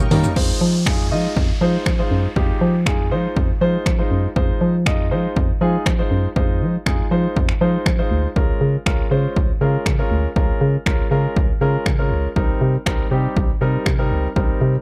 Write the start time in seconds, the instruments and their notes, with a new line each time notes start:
Already playing: supersaw synth A#4 D#5 G5 C#6
0.11 fm bass D#3, grand piano G3 A#3 C#4 D#4 A#4, floor tom, open hi-hat, shaker
0.24 floor tom, shaker
0.36 fm bass F2, grand piano G#3 D#4 F4 C5, kick, crash, downlifter
0.61 fm bass F3
0.86 fm bass F2, grand piano G#3 D#4 F4 G#4, finger snap, kick
1.11 fm bass F3, grand piano G#3 D#4 F4 D#5
1.37 fm bass F2, kick
1.61 fm bass F3, grand piano G#3 D#4 F4 C5
1.86 fm bass F3, finger snap, kick
1.99 grand piano G#3 D#4 F4 C5
2.11 fm bass F#2
2.36 fm bass F2, grand piano G#3 D#4 F4 G4, kick
2.61 fm bass F3
2.86 fm bass F2, grand piano G#3 D#4 F4 G#4, finger snap, kick
3.11 fm bass F3, grand piano G#3 D#4 F4 C5
3.37 fm bass F2, kick
3.61 fm bass F3, grand piano G#3 D#4 F4 C5
3.86 fm bass F3, finger snap, kick
3.98 grand piano G#3 D#4 F4 C5
4.11 fm bass F#2
4.36 fm bass F2, grand piano G#3 D#4 F4 C5, kick
4.61 fm bass F3
4.86 fm bass F2, grand piano G#3 D#4 F4 D#5, finger snap, kick
5.11 fm bass F3, grand piano G#3 D#4 F4 C5
5.36 fm bass F2, kick
5.61 fm bass F3, grand piano G#3 D#4 F4 G#4
5.86 fm bass F3, finger snap, kick
5.98 grand piano G#3 D#4 F4 C5
6.11 fm bass F#2
6.36 fm bass F2, grand piano G#3 D#4 F4 C5, kick
6.61 fm bass F3
6.86 fm bass F2, grand piano G#3 D#4 F4 G#4, finger snap, kick
7.11 fm bass F3, grand piano G#3 D#4 F4 C5
7.36 fm bass F2, kick
7.49 finger snap
7.61 fm bass F3, grand piano G#3 D#4 F4 C5
7.86 fm bass F3, finger snap, kick
7.98 grand piano G#3 D#4 F4 C5
8.11 fm bass D2
8.36 fm bass C#2, grand piano G#3 C#4 F4 A#4, kick
8.61 fm bass C#3
8.86 fm bass C#2, grand piano G#3 C#4 F4 A#4, finger snap, kick
9.11 fm bass C#3, grand piano G#3 C#4 F4 C5
9.36 fm bass C#2, kick
9.61 fm bass C#3, grand piano G#3 C#4 F4 A#4
9.86 fm bass C#3, finger snap, kick
9.98 grand piano G#3 C#4 F4 A#4
10.11 fm bass D2
10.36 fm bass C#2, grand piano G#3 C#4 F4 A#4, kick
10.61 fm bass C#3
10.86 fm bass C#2, grand piano G#3 C#4 F4 A#4, finger snap, kick
11.11 fm bass C#3, grand piano G#3 C#4 F4 A#4
11.36 fm bass C#2, kick
11.61 fm bass C#3, grand piano G#3 C#4 F4 A#4
11.86 fm bass C#3, finger snap, kick
11.98 grand piano G#3 C#4 F4 A#4
12.11 fm bass C#2
12.36 fm bass C2, grand piano G3 C4 D#4 A#4, kick
12.61 fm bass C3
12.86 fm bass C2, grand piano G3 C4 D#4 A#4, finger snap, kick
13.11 fm bass C3, grand piano G3 C4 D#4 G4
13.37 fm bass C2, kick
13.61 fm bass C3, grand piano G3 C4 D#4 A#4
13.86 fm bass C3, finger snap, kick
13.98 grand piano G3 C4 D#4 A#4
14.11 fm bass C#2
14.36 fm bass C2, grand piano G3 C4 D#4 A#4, kick
14.61 fm bass C3